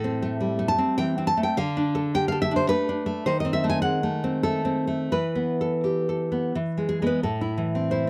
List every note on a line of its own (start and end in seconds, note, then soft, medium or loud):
0.00 0.78 A2 medium
0.00 0.66 A4 loud
0.04 0.77 C4 medium
0.22 0.58 A3 medium
0.40 1.26 G3 medium
0.59 1.36 A3 medium
0.68 0.96 A5 loud
0.78 1.17 C4 medium
0.98 1.37 E3 medium
0.98 1.25 G5 loud
1.18 1.56 C4 medium
1.27 1.41 A5 loud
1.37 1.56 A3 medium
1.43 1.57 G5 loud
1.57 2.69 D3 loud
1.57 2.11 F5 loud
1.77 2.50 D4 medium
1.95 2.31 A4 medium
2.14 2.98 G4 medium
2.14 2.27 G5 loud
2.28 2.88 A4 medium
2.28 2.41 F5 loud
2.42 2.55 E5 loud
2.51 2.88 D4 medium
2.56 2.68 C5 medium
2.69 3.05 A3 medium
2.69 3.23 B4 loud
2.89 3.26 D4 medium
3.06 3.25 A3 medium
3.26 5.08 D#3 medium
3.26 3.39 C5 loud
3.40 3.53 D#5 medium
3.45 4.03 C4 medium
3.53 3.67 E5 loud
3.64 3.82 A3 medium
3.70 3.81 G#5 loud
3.82 4.77 G#3 medium
3.82 4.41 F#5 medium
4.03 4.43 A3 medium
4.24 4.64 C4 medium
4.43 4.86 A3 medium
4.43 5.08 A4 medium
4.65 5.11 C4 medium
4.87 5.11 A3 medium
5.12 6.52 E3 medium
5.12 6.87 B4 medium
5.35 6.31 B3 medium
5.61 6.08 A4 medium
5.84 6.55 G4 soft
6.09 6.56 A4 medium
6.32 6.55 B3 medium
6.55 7.23 E3 medium
6.78 7.01 G#3 medium
6.89 7.06 G#4 medium
7.02 7.23 G#3 soft
7.02 7.23 B3 medium
7.07 7.23 B4 medium
7.23 8.10 A2 medium
7.23 7.87 A4 medium
7.41 7.90 E4 medium
7.58 8.10 E3 medium
7.75 8.06 C4 medium
7.91 8.10 E4 medium
7.91 8.10 C5 medium